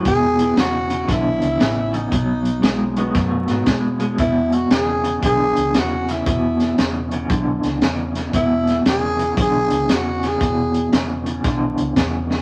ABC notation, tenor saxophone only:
X:1
M:4/4
L:1/8
Q:"Swing" 1/4=116
K:Emix
V:1 name="Tenor saxophone"
G2 F2 E3 ^D- | ^D3 z4 z | E F G2 G2 F E- | E2 z6 |
E2 G2 G2 F G- | G2 z6 |]